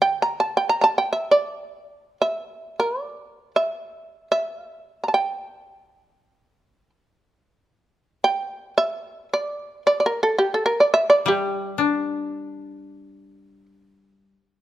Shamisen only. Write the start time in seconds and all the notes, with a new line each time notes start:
0.02 G5
0.22 A#5
0.40 A5
0.57 G5
0.69 A#5
0.81 A5 A#5
0.98 G5
1.13 E5
1.31 D5
2.22 E5
2.80 A#4
3.03 D5
3.56 E5
4.32 E5
5.04 A#5
5.08 A5
5.14 G5
8.24 G5
8.78 E5
9.34 D5
9.87 D5
10.00 D5
10.06 A#4
10.23 A4
10.38 G4
10.54 A4
10.66 A#4
10.80 D5
10.94 E5
11.10 D5
11.28 G4